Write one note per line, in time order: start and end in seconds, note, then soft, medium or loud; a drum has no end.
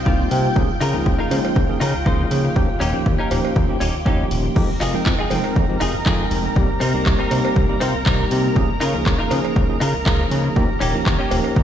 0.00 4.57 F4 medium
0.00 4.57 G5 medium
0.05 0.24 C2 medium
0.05 0.53 G3 medium
0.05 0.53 A#3 medium
0.05 0.25 C4 medium
0.05 0.53 C4 medium
0.05 0.25 D#4 medium
0.05 0.53 D#4 medium
0.05 0.26 F4 medium
0.05 0.54 G4 medium
0.05 0.30 F5 medium
0.05 kick medium
0.31 0.49 C3 loud
0.31 0.55 G5 medium
0.31 open hi-hat medium
0.44 muted clean electric guitar stroke soft
0.55 0.65 C#2 loud
0.55 0.68 F3 medium
0.55 0.68 A#3 medium
0.55 0.68 C#4 medium
0.55 0.68 D#4 medium
0.55 0.68 G#4 loud
0.55 kick loud
0.81 0.94 C#3 medium
0.81 0.94 D#4 loud
0.81 0.94 F4 medium
0.81 0.95 A#4 loud
0.81 open hi-hat medium
0.94 1.04 C#2 soft
0.94 1.28 F3 medium
0.94 1.28 A#3 medium
0.94 1.28 C#4 medium
0.94 1.28 D#4 medium
0.94 1.28 G#4 medium
1.06 1.15 C#2 loud
1.06 muted clean electric guitar stroke soft
1.06 kick medium
1.19 1.37 D#4 medium
1.19 1.38 F4 medium
1.19 1.38 A#4 medium
1.31 1.40 C#3 medium
1.31 1.66 F3 medium
1.31 1.66 G#3 medium
1.31 1.66 A#3 medium
1.31 1.66 C#4 medium
1.31 1.66 D#4 medium
1.31 open hi-hat medium
1.31 cowbell medium
1.45 cowbell medium
1.55 1.65 C#2 loud
1.55 muted clean electric guitar stroke soft
1.55 kick loud
1.69 1.76 F3 medium
1.69 1.76 A#3 medium
1.69 1.76 C#4 medium
1.69 1.76 D#4 medium
1.69 1.76 G#4 medium
1.80 1.94 C#3 medium
1.80 1.94 D#4 loud
1.80 1.94 F4 medium
1.80 1.95 A#4 loud
1.80 open hi-hat loud
1.94 2.04 C#2 soft
2.05 2.23 C#2 medium
2.05 2.53 F3 medium
2.05 2.53 A#3 medium
2.05 2.53 C#4 medium
2.05 2.25 D#4 medium
2.05 2.53 D#4 medium
2.05 2.25 F4 medium
2.05 2.54 G#4 medium
2.05 2.26 C5 medium
2.05 kick medium
2.31 2.49 C#3 medium
2.31 open hi-hat medium
2.43 muted clean electric guitar stroke soft
2.56 2.65 D#2 loud
2.56 2.68 F3 medium
2.56 2.68 A#3 medium
2.56 2.68 C#4 medium
2.56 2.68 D#4 medium
2.56 2.68 G4 loud
2.56 kick loud
2.80 2.94 D#1 medium
2.80 2.94 C#4 loud
2.80 2.94 D#4 medium
2.80 2.95 G4 loud
2.80 open hi-hat loud
2.93 3.04 D#2 soft
2.93 3.28 F3 medium
2.93 3.28 A#3 medium
2.93 3.28 C#4 medium
2.93 3.28 D#4 medium
2.93 3.28 G4 medium
3.05 3.15 D#2 loud
3.05 muted clean electric guitar stroke soft
3.05 kick medium
3.19 3.37 C#4 medium
3.19 3.38 D#4 medium
3.19 3.38 A#4 medium
3.30 3.40 D#1 medium
3.30 3.66 F3 medium
3.30 3.66 A#3 medium
3.30 3.66 C#4 medium
3.30 3.66 D#4 medium
3.30 3.66 G4 medium
3.30 open hi-hat medium
3.30 cowbell medium
3.45 cowbell medium
3.56 3.65 D#2 loud
3.56 muted clean electric guitar stroke soft
3.56 kick loud
3.68 3.76 F3 medium
3.68 3.76 A#3 medium
3.68 3.76 C#4 medium
3.68 3.76 D#4 medium
3.68 3.76 G4 medium
3.80 3.90 D#1 loud
3.80 3.94 C#4 loud
3.80 3.94 D#4 medium
3.80 3.95 G4 loud
3.80 open hi-hat loud
3.94 4.04 D#2 soft
4.05 4.24 D#2 medium
4.05 4.53 F3 medium
4.05 4.53 A#3 medium
4.05 4.25 C#4 medium
4.05 4.53 C#4 medium
4.05 4.53 D#4 medium
4.05 4.25 D#4 medium
4.05 4.53 G4 medium
4.05 4.26 G4 medium
4.05 kick medium
4.31 4.49 D#1 loud
4.31 open hi-hat medium
4.44 muted clean electric guitar stroke soft
4.55 4.65 F2 loud
4.55 4.68 F3 medium
4.55 4.68 G#3 medium
4.55 4.68 C4 medium
4.55 4.68 D#4 medium
4.55 4.68 G4 medium
4.55 11.63 A#4 medium
4.55 11.63 A#5 medium
4.55 kick loud
4.55 crash medium
4.80 4.94 F1 medium
4.80 4.94 D#4 loud
4.80 4.94 F4 loud
4.80 4.95 G#4 loud
4.80 clap soft
4.80 open hi-hat loud
4.94 5.04 F2 soft
4.94 5.28 F3 medium
4.94 5.28 G#3 medium
4.94 5.28 C4 medium
4.94 5.28 D#4 medium
4.94 5.29 G5 medium
5.05 5.15 F2 loud
5.05 muted clean electric guitar stroke soft
5.05 kick loud
5.05 clap loud
5.19 5.37 D#4 medium
5.19 5.38 F4 medium
5.19 5.38 G#4 medium
5.30 5.40 F1 medium
5.30 5.66 F3 medium
5.30 5.66 G#3 medium
5.30 5.66 C4 medium
5.30 5.66 D#4 medium
5.30 5.66 G5 medium
5.30 open hi-hat medium
5.30 cowbell medium
5.44 cowbell medium
5.55 5.65 F2 loud
5.55 muted clean electric guitar stroke soft
5.55 kick loud
5.69 5.76 F3 medium
5.69 5.76 G#3 medium
5.69 5.76 C4 medium
5.69 5.76 D#4 medium
5.69 5.76 G4 medium
5.80 5.94 F1 medium
5.80 5.94 D#4 loud
5.80 5.94 F4 medium
5.80 5.95 G#4 loud
5.80 open hi-hat loud
5.95 6.04 F2 soft
6.05 6.24 F2 medium
6.05 6.53 F3 medium
6.05 6.53 G#3 medium
6.05 6.53 C4 medium
6.05 6.25 D#4 medium
6.05 6.53 D#4 medium
6.05 6.25 F4 medium
6.05 6.26 G#4 medium
6.05 6.54 G5 medium
6.05 kick loud
6.05 clap loud
6.31 6.49 F1 medium
6.31 open hi-hat medium
6.44 muted clean electric guitar stroke soft
6.56 6.65 C2 loud
6.56 6.68 G3 medium
6.56 6.68 A#3 medium
6.56 6.68 C4 medium
6.56 6.68 D#4 medium
6.56 6.68 G4 loud
6.56 kick loud
6.80 6.94 C3 medium
6.80 6.94 C4 loud
6.80 6.94 D#4 medium
6.80 6.95 A#4 loud
6.80 open hi-hat loud
6.94 7.04 C2 soft
6.94 7.28 G3 medium
6.94 7.28 A#3 medium
6.94 7.28 C4 medium
6.94 7.28 D#4 medium
6.94 7.29 G4 medium
7.06 7.15 C2 loud
7.06 muted clean electric guitar stroke soft
7.06 kick loud
7.06 clap loud
7.19 7.37 C4 medium
7.19 7.38 D#4 medium
7.19 7.38 A#4 medium
7.30 7.40 C3 medium
7.30 7.66 G3 medium
7.30 7.66 A#3 medium
7.30 7.66 C4 medium
7.30 7.66 D#4 medium
7.30 7.66 G4 medium
7.30 open hi-hat medium
7.30 cowbell medium
7.45 cowbell medium
7.55 7.65 C2 loud
7.55 muted clean electric guitar stroke soft
7.55 kick loud
7.68 7.76 G3 medium
7.68 7.76 A#3 medium
7.68 7.76 C4 medium
7.68 7.76 D#4 medium
7.68 7.76 G4 medium
7.80 7.94 C3 medium
7.80 7.94 C4 loud
7.80 7.94 D#4 loud
7.80 7.95 F4 loud
7.80 open hi-hat loud
7.95 8.04 C2 soft
8.05 8.24 C2 medium
8.05 8.53 G3 medium
8.05 8.53 A#3 medium
8.05 8.25 C4 medium
8.05 8.53 C4 medium
8.05 8.53 D#4 medium
8.05 8.25 D#4 medium
8.05 8.53 G4 medium
8.05 8.26 A#4 medium
8.05 kick loud
8.05 clap loud
8.31 8.49 C3 loud
8.31 open hi-hat medium
8.43 muted clean electric guitar stroke soft
8.55 8.65 C#2 loud
8.55 8.68 F3 medium
8.55 8.68 A#3 medium
8.55 8.68 C#4 medium
8.55 8.68 D#4 medium
8.55 8.68 G#4 loud
8.55 kick loud
8.80 8.94 C#3 loud
8.80 8.94 D#4 loud
8.80 8.94 F4 medium
8.80 8.95 A#4 loud
8.80 clap soft
8.80 open hi-hat loud
8.93 9.04 C#2 soft
8.93 9.28 F3 medium
8.93 9.28 A#3 medium
8.93 9.28 C#4 medium
8.93 9.28 D#4 medium
8.93 9.28 G#4 medium
9.05 9.15 C#2 loud
9.05 muted clean electric guitar stroke soft
9.05 kick loud
9.05 clap loud
9.18 9.37 D#4 medium
9.18 9.38 F4 medium
9.18 9.38 A#4 medium
9.31 9.40 C#3 medium
9.31 9.66 F3 medium
9.31 9.66 A#3 medium
9.31 9.66 C#4 medium
9.31 9.66 D#4 medium
9.31 9.66 G#4 medium
9.31 open hi-hat medium
9.31 cowbell medium
9.45 cowbell medium
9.56 9.65 C#2 loud
9.56 muted clean electric guitar stroke soft
9.56 kick loud
9.69 9.76 F3 medium
9.69 9.76 A#3 medium
9.69 9.76 C#4 medium
9.69 9.76 D#4 medium
9.69 9.76 G#4 medium
9.80 9.94 C#3 medium
9.80 9.94 D#4 loud
9.80 9.94 F4 loud
9.80 9.95 A#4 loud
9.80 open hi-hat loud
9.94 10.04 C#2 soft
10.05 10.24 C#2 medium
10.05 10.53 F3 medium
10.05 10.53 A#3 medium
10.05 10.53 C#4 medium
10.05 10.25 D#4 medium
10.05 10.53 D#4 medium
10.05 10.25 F4 medium
10.05 10.54 G#4 medium
10.05 10.26 A#4 medium
10.05 kick loud
10.05 clap loud
10.31 10.49 C#3 loud
10.31 open hi-hat medium
10.44 muted clean electric guitar stroke soft
10.56 10.65 D#2 loud
10.56 10.68 F3 medium
10.56 10.68 A#3 medium
10.56 10.68 C#4 medium
10.56 10.69 D#4 medium
10.56 10.69 G4 loud
10.56 kick loud
10.80 10.94 D#1 medium
10.80 10.94 C#4 loud
10.80 10.94 D#4 medium
10.80 10.95 G4 loud
10.80 open hi-hat loud
10.94 11.04 D#2 soft
10.94 11.28 F3 medium
10.94 11.28 A#3 medium
10.94 11.29 C#4 medium
10.94 11.29 D#4 medium
10.94 11.29 G4 medium
11.05 11.15 D#2 loud
11.05 muted clean electric guitar stroke soft
11.05 kick loud
11.05 clap loud
11.19 11.37 C#4 medium
11.19 11.38 D#4 medium
11.19 11.38 G4 medium
11.31 11.40 D#1 medium
11.31 11.63 F3 medium
11.31 11.63 A#3 medium
11.31 11.63 C#4 medium
11.31 11.63 D#4 medium
11.31 11.63 G4 medium
11.31 open hi-hat medium
11.31 cowbell medium
11.44 cowbell medium
11.55 11.63 D#2 loud
11.55 muted clean electric guitar stroke soft
11.55 kick loud